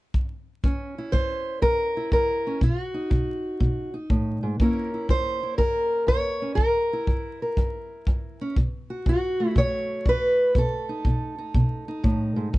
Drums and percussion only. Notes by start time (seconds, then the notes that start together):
0.14 kick
0.64 kick
1.13 kick
1.62 kick
2.12 kick
2.61 kick
3.11 kick
3.61 kick
4.10 kick
4.60 kick
5.09 kick
5.59 kick
6.08 kick
6.58 kick
7.07 kick
7.57 kick
8.07 kick
8.56 kick
9.06 kick
9.56 kick
10.06 kick
10.55 kick
11.05 kick
11.54 kick
12.04 kick
12.54 kick